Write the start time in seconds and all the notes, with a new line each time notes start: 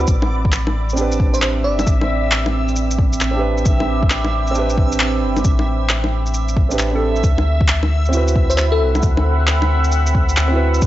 Already playing: B5
0.06 A1 C4 E5 G5 D6, kick, shaker
0.22 low bongo
0.45 kick
0.52 clap, shaker
0.67 low bongo
0.89 C4, shaker
0.96 D4 G4, shaker
1.01 B4
1.12 shaker
1.20 kick
1.34 C5, shaker
1.41 C5, clap, shaker
1.64 G1 D5
1.79 low bongo, shaker
1.87 A1, kick, shaker
2.01 low bongo
2.31 clap, shaker
2.46 low bongo
2.68 shaker
2.76 shaker
2.91 shaker
2.99 kick
3.13 shaker
3.21 A1, clap, shaker
3.31 C4 D4
3.36 G4 B4
3.58 shaker
3.65 A1, kick, shaker
3.80 low bongo
4.03 kick
4.10 clap, shaker
4.24 low bongo
4.47 C4, shaker
4.54 D4 G4, shaker
4.59 B4
4.70 shaker
4.78 kick
4.92 shaker
5.00 clap, shaker
5.22 G1
5.37 low bongo, shaker
5.44 A1, kick, shaker
5.59 low bongo
5.89 clap, shaker
6.04 low bongo
6.26 shaker
6.34 shaker
6.48 shaker
6.57 kick
6.69 C4 D4 G4 B4, shaker
6.79 A1, clap, shaker
6.91 C4 D4 G4 A4
7.16 shaker
7.23 D2 C4 F#5 B5 E6, kick, shaker
7.38 low bongo
7.61 kick
7.68 clap, shaker
7.83 low bongo
8.05 C4, shaker
8.11 E4 F#4, shaker
8.17 B4
8.28 shaker
8.36 kick
8.50 C5, shaker
8.57 C5, clap, shaker
8.72 A4
8.80 C2
8.95 low bongo, shaker
9.02 D2, kick, shaker
9.17 low bongo
9.47 clap, shaker
9.62 low bongo
9.84 shaker
9.92 shaker
10.06 shaker
10.15 kick
10.29 shaker
10.37 D2, clap, shaker
10.48 C4 E4
10.53 F#4 B4
10.74 shaker
10.82 D2, kick, shaker